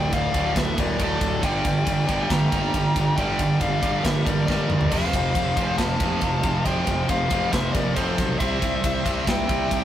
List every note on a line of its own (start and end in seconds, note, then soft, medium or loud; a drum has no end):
0.00 0.33 D2 medium
0.00 0.11 A2 medium
0.00 0.33 A2 loud
0.00 0.08 A2 medium
0.00 0.32 D3 loud
0.00 0.11 D5 medium
0.00 0.13 G5 loud
0.08 0.14 D2 medium
0.08 0.15 A2 medium
0.13 0.31 D1 medium
0.13 0.22 D2 medium
0.13 0.22 A2 medium
0.13 0.55 D5 medium
0.13 0.58 F5 loud
0.13 kick medium
0.13 ride loud
0.23 0.29 D2 medium
0.23 0.30 A2 medium
0.29 0.37 D2 medium
0.29 0.38 A2 medium
0.34 0.53 D1 medium
0.34 0.45 D2 medium
0.34 0.45 A2 medium
0.34 0.55 D3 loud
0.34 kick medium
0.34 ride medium
0.45 0.52 D2 medium
0.45 0.53 A2 medium
0.52 0.60 D2 medium
0.52 0.60 A2 medium
0.52 kick medium
0.52 ride loud
0.56 0.75 D1 medium
0.56 0.78 A4 medium
0.56 0.79 E5 medium
0.56 snare loud
0.60 0.67 D2 medium
0.60 0.68 A2 medium
0.68 0.75 D2 medium
0.68 0.76 A2 medium
0.75 0.96 D1 medium
0.75 0.82 D2 medium
0.75 0.82 A2 medium
0.75 kick loud
0.75 ride medium
0.80 0.90 D2 medium
0.80 0.90 A2 medium
0.80 0.99 A#4 medium
0.80 0.99 D5 medium
0.90 0.98 D2 medium
0.90 0.98 A2 medium
0.98 1.18 D1 medium
0.98 1.05 D2 medium
0.98 1.05 A2 medium
0.98 1.20 D3 loud
0.98 1.45 D5 loud
0.98 kick medium
0.98 ride loud
1.03 1.13 D2 medium
1.03 1.13 A2 medium
1.03 1.42 A4 medium
1.13 1.20 D2 medium
1.13 1.20 A2 medium
1.20 1.40 D1 medium
1.20 1.28 D2 medium
1.20 1.28 A2 medium
1.20 kick medium
1.20 ride medium
1.28 1.36 D2 medium
1.28 1.36 A2 medium
1.36 1.42 D2 medium
1.36 1.43 A2 medium
1.42 1.61 G1 loud
1.42 1.49 G2 medium
1.42 1.50 D3 medium
1.42 1.63 G3 loud
1.42 2.27 D5 loud
1.42 2.33 G5 loud
1.42 kick medium
1.42 ride loud
1.49 1.56 G2 medium
1.49 1.58 D3 medium
1.56 1.64 G2 medium
1.56 1.66 D3 medium
1.64 1.83 G1 medium
1.64 1.71 G2 medium
1.64 1.74 D3 medium
1.64 kick medium
1.64 ride medium
1.71 1.79 G2 medium
1.71 1.82 D3 medium
1.79 1.87 G2 medium
1.79 1.90 D3 medium
1.87 2.05 G1 medium
1.87 1.95 G2 medium
1.87 1.97 D3 medium
1.87 kick medium
1.87 ride loud
1.96 2.01 G2 medium
1.96 2.05 D3 medium
2.02 2.09 G2 medium
2.02 2.13 D3 medium
2.08 2.27 G1 loud
2.08 2.16 G2 medium
2.08 2.28 G3 medium
2.08 kick medium
2.08 ride medium
2.14 2.24 G2 medium
2.14 2.22 D3 medium
2.22 2.33 G2 medium
2.22 2.29 D3 medium
2.29 2.49 G1 medium
2.29 2.40 G2 medium
2.29 2.37 D3 medium
2.29 3.14 G5 medium
2.29 3.20 A#5 loud
2.29 kick medium
2.29 snare loud
2.29 ride loud
2.38 2.47 G2 medium
2.38 2.45 D3 medium
2.45 2.55 G2 medium
2.45 2.53 D3 medium
2.52 2.71 G1 loud
2.52 2.62 G2 medium
2.52 2.61 D3 medium
2.52 2.72 G3 medium
2.52 kick medium
2.52 ride medium
2.62 2.70 G2 medium
2.62 2.68 D3 medium
2.69 2.78 G2 medium
2.69 2.77 D3 medium
2.73 2.92 G1 medium
2.73 2.93 D3 medium
2.73 kick medium
2.73 ride loud
2.78 2.84 G2 medium
2.78 2.84 D3 medium
2.85 2.92 G2 medium
2.85 2.92 D3 medium
2.92 3.00 G2 medium
2.92 3.00 D3 medium
2.96 3.14 G1 medium
2.96 kick medium
2.96 ride medium
3.00 3.08 G2 medium
3.00 3.07 D3 medium
3.07 3.16 G2 medium
3.07 3.15 D3 medium
3.16 3.36 G1 medium
3.16 3.24 G2 medium
3.16 3.25 D3 medium
3.16 3.38 G3 loud
3.16 3.58 D5 medium
3.16 3.61 G5 loud
3.16 kick medium
3.16 ride medium
3.24 3.32 G2 medium
3.24 3.31 D3 medium
3.32 3.39 G2 medium
3.32 3.39 D3 medium
3.39 3.58 G1 loud
3.39 3.47 G2 medium
3.39 3.47 D3 medium
3.39 kick medium
3.39 ride medium
3.47 3.54 G2 medium
3.47 3.55 D3 medium
3.55 3.62 G2 medium
3.55 3.63 D3 medium
3.61 3.79 G1 medium
3.61 3.69 G2 medium
3.61 3.70 D3 medium
3.61 4.01 D5 medium
3.61 4.05 F5 loud
3.61 kick medium
3.61 ride medium
3.69 3.77 G2 medium
3.69 3.76 D3 medium
3.76 3.84 G2 medium
3.76 3.84 D3 medium
3.82 4.01 G1 loud
3.82 3.92 G2 medium
3.82 3.92 D3 medium
3.82 4.03 G3 loud
3.82 kick medium
3.82 ride medium
3.93 4.00 G2 medium
3.93 4.00 D3 medium
4.00 4.07 G2 medium
4.00 4.08 D3 medium
4.00 4.24 A#4 medium
4.05 4.23 G1 medium
4.05 4.15 G2 medium
4.05 4.15 D3 medium
4.05 4.25 E5 loud
4.05 kick medium
4.05 snare loud
4.05 ride loud
4.16 4.23 G2 medium
4.16 4.23 D3 medium
4.23 4.44 G1 medium
4.23 4.29 G2 medium
4.23 4.31 D3 medium
4.23 4.46 A#4 medium
4.23 4.45 D5 medium
4.23 kick loud
4.23 ride medium
4.30 4.37 G2 medium
4.30 4.37 D3 medium
4.37 4.45 G2 medium
4.37 4.45 D3 medium
4.46 4.67 G1 medium
4.46 4.52 G2 medium
4.46 4.53 D3 medium
4.46 4.68 G3 loud
4.46 4.89 A#4 medium
4.46 4.87 D5 loud
4.46 kick medium
4.50 4.60 G2 medium
4.50 4.60 D3 medium
4.50 snare medium
4.61 4.67 G2 medium
4.61 4.68 D3 medium
4.67 4.88 G1 medium
4.67 4.75 G2 medium
4.67 4.76 D3 medium
4.67 mid tom medium
4.75 4.82 G2 medium
4.75 4.83 D3 medium
4.81 4.90 G2 medium
4.81 4.91 D3 medium
4.81 floor tom medium
4.90 5.10 F1 loud
4.90 4.99 F2 medium
4.90 5.00 C3 medium
4.90 5.11 F3 loud
4.90 5.75 C5 loud
4.90 5.74 F5 loud
4.90 kick medium
4.90 crash loud
4.90 ride loud
4.99 5.07 F2 medium
4.99 5.08 C3 medium
5.07 5.15 F2 medium
5.07 5.17 C3 medium
5.13 5.32 F1 medium
5.13 5.22 F2 medium
5.13 5.23 C3 medium
5.13 kick loud
5.13 ride medium
5.23 5.30 F2 medium
5.23 5.31 C3 medium
5.31 5.39 F2 medium
5.31 5.39 C3 medium
5.35 5.53 F1 medium
5.35 kick medium
5.35 ride loud
5.39 5.46 F2 medium
5.39 5.47 C3 medium
5.46 5.54 F2 medium
5.46 5.55 C3 medium
5.55 5.75 F1 medium
5.55 5.61 F2 medium
5.55 5.62 C3 medium
5.55 5.77 F3 loud
5.55 kick medium
5.55 ride medium
5.62 5.69 F2 medium
5.62 5.70 C3 medium
5.70 5.77 F2 medium
5.70 5.78 C3 medium
5.78 5.97 F1 medium
5.78 5.85 F2 medium
5.78 5.86 C3 medium
5.78 6.62 F5 medium
5.78 6.61 A5 loud
5.78 kick medium
5.78 snare loud
5.78 ride loud
5.86 5.92 F2 medium
5.86 5.94 C3 medium
5.93 6.00 F2 medium
5.93 6.01 C3 medium
6.00 6.19 F1 medium
6.00 6.08 F2 medium
6.00 6.09 C3 medium
6.00 6.21 F3 medium
6.00 kick medium
6.00 ride medium
6.09 6.16 F2 medium
6.09 6.17 C3 medium
6.16 6.23 F2 medium
6.16 6.24 C3 medium
6.21 6.41 F1 medium
6.21 6.31 F2 medium
6.21 6.32 C3 medium
6.21 kick medium
6.21 ride medium
6.33 6.38 F2 medium
6.33 6.40 C3 medium
6.39 6.47 F2 medium
6.39 6.48 C3 medium
6.43 6.62 F1 medium
6.43 6.63 F2 medium
6.43 kick medium
6.43 ride medium
6.48 6.54 F2 medium
6.48 6.56 C3 medium
6.54 6.62 F2 medium
6.54 6.64 C3 medium
6.65 6.84 F1 loud
6.65 6.71 F2 medium
6.65 6.73 C3 medium
6.65 6.86 F3 loud
6.65 7.06 C5 loud
6.65 7.06 G5 loud
6.65 kick medium
6.65 ride loud
6.72 6.79 F2 medium
6.72 6.80 C3 medium
6.80 6.86 F2 medium
6.80 6.88 C3 medium
6.87 7.06 F1 medium
6.87 6.94 F2 medium
6.87 6.95 C3 medium
6.87 kick medium
6.87 ride medium
6.95 7.02 F2 medium
6.95 7.02 C3 medium
7.02 7.09 F2 medium
7.02 7.10 C3 medium
7.09 7.28 F1 medium
7.09 7.17 F2 medium
7.09 7.18 C3 medium
7.09 7.50 C5 medium
7.09 7.50 F5 loud
7.09 kick medium
7.09 ride loud
7.18 7.24 F2 medium
7.18 7.25 C3 medium
7.24 7.32 F2 medium
7.24 7.33 C3 medium
7.30 7.49 F1 loud
7.30 7.40 F2 medium
7.30 7.40 C3 medium
7.30 7.51 F3 loud
7.30 kick medium
7.30 ride medium
7.40 7.48 F2 medium
7.40 7.46 C3 medium
7.47 7.55 F2 medium
7.47 7.54 C3 medium
7.52 7.71 F1 medium
7.52 7.63 F2 medium
7.52 7.63 C3 medium
7.52 7.73 C5 medium
7.52 7.75 E5 medium
7.52 kick medium
7.52 snare loud
7.52 ride loud
7.63 7.71 F2 medium
7.63 7.70 C3 medium
7.71 7.93 F1 medium
7.71 7.78 F2 medium
7.71 7.78 C3 medium
7.71 7.95 A#4 medium
7.71 7.93 D5 medium
7.71 kick medium
7.71 ride medium
7.78 7.86 F2 medium
7.78 7.85 C3 medium
7.85 7.93 F2 medium
7.85 7.93 C3 medium
7.93 8.15 F1 loud
7.93 8.01 F2 medium
7.93 8.01 C3 medium
7.93 8.17 F3 loud
7.93 8.37 A4 medium
7.93 8.38 C5 medium
7.93 kick medium
7.93 ride loud
8.01 8.09 F2 medium
8.01 8.08 C3 medium
8.08 8.17 F2 medium
8.08 8.16 C3 medium
8.16 8.37 B1 medium
8.16 8.24 F2 medium
8.16 8.23 C3 medium
8.16 kick medium
8.16 ride medium
8.23 8.31 F2 medium
8.23 8.30 C3 medium
8.31 8.39 F2 medium
8.31 8.38 C3 medium
8.39 8.59 C2 medium
8.39 8.47 C3 loud
8.39 8.48 G3 loud
8.39 8.61 C4 loud
8.39 9.23 C5 medium
8.39 9.23 E5 medium
8.39 kick medium
8.39 ride loud
8.47 8.54 C3 medium
8.47 8.55 G3 medium
8.54 8.62 C3 medium
8.54 8.62 G3 medium
8.62 8.81 C2 medium
8.62 8.70 C3 medium
8.62 8.70 G3 medium
8.62 kick medium
8.62 ride medium
8.71 8.77 C3 medium
8.71 8.77 G3 medium
8.78 8.85 C3 medium
8.78 8.85 G3 medium
8.84 9.02 C2 medium
8.84 8.93 C3 medium
8.84 8.93 G3 medium
8.84 kick medium
8.84 ride loud
8.93 9.00 C3 medium
8.93 9.00 G3 medium
9.00 9.07 C3 medium
9.00 9.08 G3 medium
9.06 9.24 C2 medium
9.06 9.15 C3 medium
9.06 9.15 G3 medium
9.06 9.26 C4 loud
9.06 kick medium
9.06 ride medium
9.16 9.22 C3 medium
9.16 9.23 G3 loud
9.23 9.30 C3 medium
9.23 9.31 G3 medium
9.27 9.46 C2 medium
9.27 9.84 E5 medium
9.27 9.84 G5 loud
9.27 kick medium
9.27 snare loud
9.27 ride loud
9.32 9.39 C3 medium
9.32 9.38 G3 medium
9.39 9.46 C3 medium
9.39 9.46 G3 medium
9.47 9.68 C2 medium
9.47 9.54 C3 medium
9.47 9.54 G3 medium
9.47 9.70 C4 medium
9.47 kick medium
9.47 ride medium
9.54 9.62 C3 medium
9.54 9.61 G3 medium
9.62 9.68 C3 medium
9.62 9.68 G3 medium
9.69 9.84 C2 medium
9.69 9.76 C3 medium
9.69 9.76 G3 medium
9.69 kick medium
9.69 ride loud
9.76 9.83 C3 medium
9.76 9.84 G3 medium